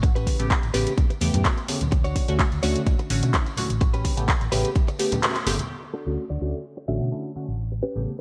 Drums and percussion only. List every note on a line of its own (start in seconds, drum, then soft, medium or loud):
0.03 kick loud
0.03 closed hi-hat medium
0.03 tambourine soft
0.16 closed hi-hat soft
0.16 tambourine soft
0.27 kick medium
0.27 open hi-hat medium
0.27 tambourine medium
0.27 high conga medium
0.40 closed hi-hat medium
0.40 tambourine soft
0.50 kick loud
0.50 clap loud
0.50 closed hi-hat medium
0.50 tambourine soft
0.63 closed hi-hat soft
0.63 tambourine soft
0.63 high conga medium
0.74 open hi-hat medium
0.74 tambourine medium
0.87 closed hi-hat medium
0.87 tambourine soft
0.98 kick loud
0.98 closed hi-hat medium
0.98 tambourine soft
0.98 high conga medium
1.10 closed hi-hat soft
1.10 tambourine soft
1.21 open hi-hat loud
1.21 tambourine loud
1.34 closed hi-hat medium
1.34 tambourine soft
1.34 high conga medium
1.34 low conga medium
1.45 kick loud
1.45 clap loud
1.45 closed hi-hat medium
1.45 tambourine medium
1.58 closed hi-hat soft
1.58 tambourine soft
1.68 open hi-hat medium
1.68 tambourine loud
1.68 high conga medium
1.81 closed hi-hat soft
1.81 tambourine soft
1.81 low conga medium
1.92 kick loud
1.92 closed hi-hat medium
1.92 tambourine medium
2.04 closed hi-hat soft
2.04 tambourine soft
2.16 kick medium
2.16 open hi-hat medium
2.16 tambourine medium
2.16 high conga medium
2.28 closed hi-hat medium
2.28 tambourine soft
2.39 kick loud
2.39 clap loud
2.39 closed hi-hat medium
2.39 tambourine medium
2.52 closed hi-hat soft
2.52 tambourine soft
2.52 high conga medium
2.63 open hi-hat medium
2.63 tambourine medium
2.76 closed hi-hat soft
2.76 tambourine soft
2.86 kick loud
2.86 closed hi-hat medium
2.86 tambourine medium
2.86 high conga medium
2.99 closed hi-hat soft
2.99 tambourine soft
3.10 open hi-hat loud
3.10 tambourine medium
3.23 closed hi-hat medium
3.23 tambourine soft
3.23 high conga medium
3.34 kick loud
3.34 clap loud
3.34 closed hi-hat medium
3.34 tambourine medium
3.46 closed hi-hat soft
3.46 tambourine soft
3.57 open hi-hat medium
3.57 tambourine medium
3.57 high conga medium
3.57 low conga medium
3.70 closed hi-hat medium
3.70 tambourine soft
3.81 kick loud
3.81 closed hi-hat medium
3.81 tambourine medium
3.94 closed hi-hat soft
3.94 tambourine soft
4.05 kick medium
4.05 open hi-hat loud
4.05 tambourine loud
4.05 high conga loud
4.17 closed hi-hat medium
4.17 tambourine soft
4.28 kick loud
4.28 clap loud
4.28 closed hi-hat medium
4.28 tambourine medium
4.41 closed hi-hat soft
4.41 tambourine soft
4.41 high conga medium
4.52 open hi-hat medium
4.52 tambourine medium
4.65 closed hi-hat medium
4.65 tambourine soft
4.75 kick loud
4.75 closed hi-hat medium
4.75 tambourine soft
4.75 high conga medium
4.88 closed hi-hat soft
4.88 tambourine soft
4.99 open hi-hat loud
4.99 tambourine loud
5.12 closed hi-hat medium
5.12 tambourine soft
5.12 high conga medium
5.12 low conga medium
5.23 clap loud
5.23 closed hi-hat medium
5.23 tambourine medium
5.35 closed hi-hat soft
5.35 tambourine soft
5.47 open hi-hat medium
5.47 tambourine loud
5.47 high conga loud
5.59 closed hi-hat medium
5.59 tambourine soft
5.59 low conga medium